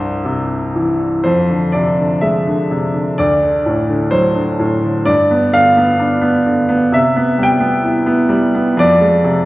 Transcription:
0.00 1.20 C2 medium
0.00 1.20 G2 soft
0.00 0.70 C5 medium
0.25 1.21 C3 soft
0.76 1.23 E3 soft
1.24 3.14 F2 medium
1.24 1.74 C5 medium
1.50 1.97 D3 soft
1.72 2.69 C3 soft
1.72 2.23 D5 medium
1.99 2.46 D3 soft
2.21 3.15 G#3 soft
2.21 3.21 E5 medium
2.47 2.93 D3 soft
2.71 3.17 C3 soft
2.94 3.17 D3 soft
3.18 5.04 D2 medium
3.18 4.16 D5 medium
3.43 3.88 D3 soft
3.66 4.58 A2 soft
3.89 4.34 D3 soft
4.11 5.04 F#3 soft
4.11 4.79 C5 medium
4.35 4.82 D3 soft
4.60 5.05 A2 medium
4.83 5.06 D3 soft
5.05 6.89 G2 medium
5.05 5.54 D5 medium
5.31 5.75 B3 soft
5.53 6.45 D3 soft
5.53 6.90 F5 loud
5.77 6.20 B3 soft
5.99 6.90 D4 soft
6.21 6.67 B3 medium
6.46 6.92 D3 medium
6.69 6.92 B3 soft
6.92 8.75 C3 medium
6.92 7.37 E5 medium
7.16 7.59 B3 medium
7.38 8.27 G3 soft
7.43 8.30 G5 loud
7.60 8.05 B3 medium
7.84 8.75 E4 medium
8.06 8.53 B3 medium
8.29 8.76 G3 medium
8.55 8.78 B3 soft
8.77 9.45 F2 medium
8.77 9.45 D5 medium
9.01 9.45 G#3 soft
9.24 9.45 C3 medium

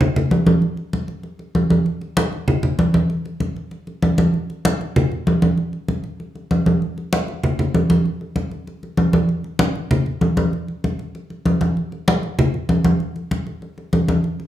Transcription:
0.01 high conga soft
0.01 low conga loud
0.16 high conga soft
0.16 low conga medium
0.31 high conga medium
0.47 high conga medium
0.62 high conga soft
0.77 high conga soft
0.93 high conga medium
1.08 high conga soft
1.23 high conga soft
1.39 high conga soft
1.55 high conga medium
1.70 high conga medium
1.86 high conga soft
2.01 high conga soft
2.17 high conga medium
2.32 high conga soft
2.48 high conga soft
2.48 low conga medium
2.63 high conga soft
2.63 low conga medium
2.79 high conga medium
2.94 high conga medium
3.10 high conga soft
3.25 high conga soft
3.40 high conga medium
3.56 high conga soft
3.71 high conga soft
3.87 high conga soft
4.02 high conga medium
4.18 high conga medium
4.34 high conga soft
4.50 high conga soft
4.65 high conga medium
4.81 high conga soft
4.96 high conga soft
4.96 low conga loud
5.12 high conga soft
5.27 high conga medium
5.42 high conga medium
5.57 high conga soft
5.73 high conga soft
5.88 high conga medium
6.04 high conga soft
6.20 high conga soft
6.35 high conga soft
6.51 high conga medium
6.66 high conga medium
6.82 high conga soft
6.98 high conga soft
7.13 high conga loud
7.28 high conga soft
7.44 high conga soft
7.44 low conga medium
7.59 high conga soft
7.59 low conga medium
7.74 high conga medium
7.90 high conga medium
8.06 high conga soft
8.21 high conga soft
8.36 high conga medium
8.51 high conga soft
8.67 high conga soft
8.83 high conga soft
8.97 high conga medium
9.13 high conga medium
9.29 high conga soft
9.44 high conga soft
9.59 high conga loud
9.75 high conga soft
9.91 high conga soft
9.91 low conga loud
10.06 high conga soft
10.21 high conga medium
10.37 high conga medium
10.53 high conga soft
10.68 high conga soft
10.84 high conga medium
10.99 high conga soft
11.15 high conga soft
11.30 high conga soft
11.46 high conga medium
11.61 high conga medium
11.77 high conga soft
11.92 high conga soft
12.08 high conga loud
12.23 high conga soft
12.39 high conga soft
12.39 low conga medium
12.54 high conga soft
12.69 high conga medium
12.85 high conga loud
13.00 high conga soft
13.16 high conga soft
13.31 high conga medium
13.47 high conga soft
13.62 high conga soft
13.78 high conga soft
13.93 high conga medium
14.08 high conga medium
14.24 high conga soft
14.40 high conga soft

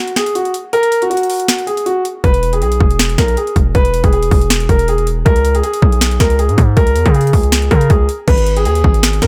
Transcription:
0.00 0.13 F#4 medium
0.08 closed hi-hat medium
0.16 0.33 G#4 medium
0.16 finger snap medium
0.16 snare medium
0.16 closed hi-hat medium
0.26 closed hi-hat medium
0.35 0.52 F#4 medium
0.35 closed hi-hat medium
0.45 closed hi-hat soft
0.54 closed hi-hat medium
0.73 1.00 A#4 loud
0.73 closed hi-hat medium
0.83 closed hi-hat medium
0.92 closed hi-hat medium
1.02 1.09 F#4 medium
1.02 closed hi-hat medium
1.10 1.64 F#4 medium
1.10 closed hi-hat medium
1.17 closed hi-hat medium
1.23 closed hi-hat medium
1.30 open hi-hat medium
1.40 closed hi-hat medium
1.48 finger snap medium
1.48 snare loud
1.48 closed hi-hat medium
1.58 closed hi-hat medium
1.67 1.84 G#4 medium
1.67 closed hi-hat medium
1.77 closed hi-hat medium
1.86 2.03 F#4 medium
1.86 closed hi-hat medium
2.05 closed hi-hat medium
2.24 2.63 E1 loud
2.24 2.51 B4 loud
2.24 kick loud
2.24 closed hi-hat medium
2.34 closed hi-hat medium
2.43 closed hi-hat medium
2.53 2.60 G#4 medium
2.53 closed hi-hat medium
2.62 2.80 B1 loud
2.62 3.15 G#4 medium
2.62 closed hi-hat medium
2.72 closed hi-hat medium
2.80 3.17 E1 loud
2.80 kick loud
2.91 closed hi-hat medium
2.99 finger snap medium
2.99 snare loud
2.99 closed hi-hat medium
3.09 closed hi-hat medium
3.18 3.36 B1 loud
3.18 3.35 A#4 medium
3.18 finger snap medium
3.18 kick medium
3.18 snare medium
3.18 closed hi-hat medium
3.28 closed hi-hat medium
3.37 3.54 G#4 medium
3.37 closed hi-hat medium
3.47 closed hi-hat soft
3.56 3.74 E1 loud
3.56 kick loud
3.56 closed hi-hat medium
3.75 4.03 E1 loud
3.75 4.02 B4 loud
3.75 kick loud
3.75 closed hi-hat medium
3.85 closed hi-hat medium
3.94 closed hi-hat medium
4.03 4.30 E1 loud
4.03 4.11 G#4 medium
4.03 kick loud
4.03 closed hi-hat medium
4.13 4.66 G#4 medium
4.13 closed hi-hat medium
4.23 closed hi-hat medium
4.31 4.68 E1 loud
4.31 kick loud
4.31 open hi-hat medium
4.41 closed hi-hat medium
4.50 finger snap medium
4.50 snare loud
4.50 closed hi-hat medium
4.60 closed hi-hat medium
4.69 5.24 E1 loud
4.69 4.86 A#4 medium
4.69 kick medium
4.69 closed hi-hat medium
4.79 closed hi-hat medium
4.88 5.05 G#4 medium
4.88 closed hi-hat medium
4.98 closed hi-hat soft
5.07 closed hi-hat medium
5.25 5.62 C#2 loud
5.25 5.53 A#4 loud
5.25 kick loud
5.25 closed hi-hat medium
5.36 closed hi-hat medium
5.45 closed hi-hat medium
5.55 5.62 G#4 medium
5.55 closed hi-hat medium
5.63 6.17 G#4 medium
5.63 closed hi-hat medium
5.74 closed hi-hat medium
5.82 6.19 B1 loud
5.82 kick loud
5.92 closed hi-hat medium
6.01 finger snap medium
6.01 snare loud
6.01 closed hi-hat medium
6.11 closed hi-hat medium
6.20 6.50 C#2 loud
6.20 6.37 A#4 medium
6.20 finger snap medium
6.20 kick medium
6.20 snare medium
6.20 closed hi-hat medium
6.30 closed hi-hat medium
6.39 6.56 G#4 medium
6.39 closed hi-hat medium
6.49 6.57 G#2 loud
6.49 closed hi-hat soft
6.58 6.76 G#2 loud
6.58 kick loud
6.58 closed hi-hat medium
6.77 6.97 C#2 loud
6.77 7.04 A#4 loud
6.77 kick loud
6.77 closed hi-hat medium
6.87 closed hi-hat medium
6.96 7.05 E2 loud
6.96 closed hi-hat medium
7.05 7.32 C#3 loud
7.05 7.13 G#4 medium
7.05 kick medium
7.05 closed hi-hat medium
7.14 7.68 G#4 medium
7.14 closed hi-hat medium
7.21 closed hi-hat medium
7.27 closed hi-hat medium
7.33 7.70 C#2 loud
7.33 kick loud
7.33 open hi-hat medium
7.43 closed hi-hat medium
7.52 finger snap medium
7.52 snare loud
7.52 closed hi-hat medium
7.62 closed hi-hat medium
7.71 7.89 C#3 loud
7.71 7.88 A#4 medium
7.71 kick medium
7.71 closed hi-hat medium
7.81 closed hi-hat medium
7.90 8.08 C#2 loud
7.90 8.06 G#4 medium
7.90 kick loud
7.90 closed hi-hat medium
8.09 closed hi-hat medium
8.28 8.67 G#1 loud
8.28 8.55 B4 loud
8.28 kick loud
8.28 closed hi-hat medium
8.28 crash loud
8.38 closed hi-hat medium
8.47 closed hi-hat medium
8.56 8.64 G#4 medium
8.56 closed hi-hat medium
8.65 8.83 D#2 loud
8.65 9.19 G#4 medium
8.65 closed hi-hat medium
8.75 closed hi-hat medium
8.84 9.20 G#1 loud
8.84 kick loud
8.94 closed hi-hat medium
9.03 finger snap loud
9.03 snare loud
9.03 closed hi-hat medium
9.13 closed hi-hat medium
9.22 9.27 D#2 loud
9.22 9.27 A#4 medium
9.22 finger snap medium
9.22 kick medium
9.22 snare medium
9.22 closed hi-hat medium

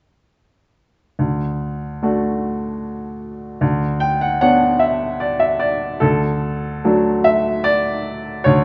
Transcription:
1.19 3.58 D2 soft
2.02 3.58 A3 soft
2.02 3.58 D4 soft
2.02 3.59 F#4 soft
3.61 5.98 D2 soft
4.00 4.19 G5 soft
4.21 4.40 F#5 soft
4.41 5.99 B3 soft
4.41 5.99 D4 soft
4.41 5.99 C#5 soft
4.41 4.78 F#5 medium
4.79 5.17 E5 soft
5.20 5.39 D5 soft
5.40 5.59 E5 soft
5.59 5.99 D5 soft
6.00 8.42 D2 soft
6.00 7.22 A4 soft
6.84 7.64 F#3 soft
6.84 7.64 A3 soft
6.84 7.64 D4 soft
7.24 7.67 E5 medium
7.64 8.47 D5 medium
8.44 8.64 D2 soft
8.44 8.64 C#5 medium

